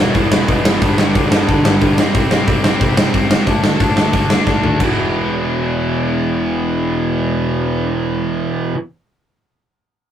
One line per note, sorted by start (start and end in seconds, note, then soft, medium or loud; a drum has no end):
0.00 0.12 E2 medium
0.00 0.13 B2 medium
0.00 0.13 E3 loud
0.00 0.64 E3 medium
0.00 0.67 G3 medium
0.00 0.65 B3 loud
0.00 0.64 E4 loud
0.13 0.31 E2 loud
0.13 0.26 E2 medium
0.13 0.31 B2 loud
0.13 0.30 E3 loud
0.13 kick loud
0.13 open hi-hat medium
0.31 0.42 E1 medium
0.31 0.46 E2 medium
0.31 0.47 B2 medium
0.31 0.48 E3 medium
0.31 snare loud
0.47 0.60 E1 medium
0.47 0.65 E2 medium
0.47 0.64 B2 loud
0.47 0.63 E3 medium
0.47 kick loud
0.47 open hi-hat medium
0.64 0.76 G1 medium
0.64 0.81 E2 medium
0.64 0.80 B2 medium
0.64 0.80 E3 loud
0.64 0.83 G3 medium
0.64 0.81 B3 medium
0.64 0.80 E4 medium
0.64 snare loud
0.69 0.82 E3 medium
0.81 0.93 G1 loud
0.81 0.97 G2 medium
0.81 1.97 G2 medium
0.81 0.97 D3 loud
0.81 1.97 D3 loud
0.81 0.97 G3 loud
0.81 1.98 G3 medium
0.81 1.98 B3 loud
0.81 1.98 D4 medium
0.81 kick loud
0.81 open hi-hat medium
0.98 1.10 G1 medium
0.98 1.13 G2 medium
0.98 1.14 D3 medium
0.98 1.15 G3 loud
0.98 snare loud
1.14 1.26 D2 medium
1.14 1.31 G2 medium
1.14 1.30 D3 medium
1.14 1.30 G3 medium
1.14 kick loud
1.14 open hi-hat medium
1.31 1.43 G1 medium
1.31 1.46 G2 medium
1.31 1.47 D3 medium
1.31 1.48 G3 medium
1.31 snare loud
1.47 1.60 G1 medium
1.47 1.64 G2 medium
1.47 1.63 D3 medium
1.47 1.62 G3 loud
1.47 kick loud
1.47 open hi-hat medium
1.64 1.76 G1 medium
1.64 1.79 G2 medium
1.64 1.80 D3 medium
1.64 1.81 G3 loud
1.64 snare loud
1.81 1.93 G1 medium
1.81 1.96 G2 medium
1.81 1.96 D3 medium
1.81 1.96 G3 medium
1.81 kick loud
1.81 open hi-hat medium
1.97 2.10 C2 medium
1.97 2.14 C3 loud
1.97 2.13 G3 loud
1.97 2.12 C4 loud
1.97 snare loud
2.14 2.26 C2 medium
2.14 2.29 C3 medium
2.14 2.30 G3 loud
2.14 2.30 C4 loud
2.14 kick loud
2.14 open hi-hat medium
2.30 2.43 C2 medium
2.30 2.47 C3 medium
2.30 2.46 G3 medium
2.30 2.45 C4 medium
2.30 snare loud
2.46 2.59 C2 medium
2.46 2.61 C3 medium
2.46 2.62 G3 medium
2.46 2.62 C4 medium
2.46 kick loud
2.46 open hi-hat medium
2.63 2.76 C2 medium
2.63 2.80 C3 medium
2.63 2.79 G3 loud
2.63 2.78 C4 loud
2.63 snare loud
2.80 2.95 C3 medium
2.80 2.92 C3 medium
2.80 2.96 G3 loud
2.80 2.97 C4 medium
2.80 kick loud
2.80 open hi-hat medium
2.97 3.09 C2 medium
2.97 3.14 C3 medium
2.97 3.13 G3 medium
2.97 3.12 C4 medium
2.97 snare loud
3.14 3.25 C2 medium
3.14 3.28 C3 medium
3.14 3.30 G3 medium
3.14 3.30 C4 loud
3.14 kick loud
3.14 open hi-hat soft
3.30 3.42 C#2 medium
3.30 3.45 C3 medium
3.30 3.46 G3 loud
3.30 3.46 C4 loud
3.30 snare loud
3.45 3.58 D2 medium
3.45 3.62 D3 medium
3.45 3.62 A3 loud
3.45 3.61 D4 loud
3.45 kick loud
3.45 open hi-hat medium
3.62 3.75 D2 medium
3.62 3.78 D3 medium
3.62 3.79 A3 medium
3.62 3.79 D4 medium
3.62 snare loud
3.79 3.92 A2 medium
3.79 3.97 D3 medium
3.79 3.96 A3 medium
3.79 3.96 D4 medium
3.79 kick loud
3.79 open hi-hat medium
3.97 4.08 D2 medium
3.97 4.12 D3 medium
3.97 4.13 A3 medium
3.97 4.13 D4 medium
3.97 snare loud
4.13 4.25 D2 medium
4.13 4.30 D3 medium
4.13 4.29 A3 loud
4.13 4.29 D4 medium
4.13 kick loud
4.13 open hi-hat medium
4.29 4.41 D2 medium
4.29 4.45 D3 medium
4.29 4.45 A3 medium
4.29 4.46 D4 loud
4.29 snare loud
4.46 4.58 D2 medium
4.46 4.62 D3 medium
4.46 4.62 A3 medium
4.46 4.61 D4 medium
4.46 kick loud
4.46 snare medium
4.63 4.75 D2 medium
4.63 4.79 D3 medium
4.63 4.79 A3 medium
4.63 4.79 D4 loud
4.63 floor tom medium
4.78 8.71 E1 medium
4.78 8.73 E2 medium
4.78 8.75 B2 loud
4.78 8.77 E3 loud
4.78 kick loud
4.78 crash medium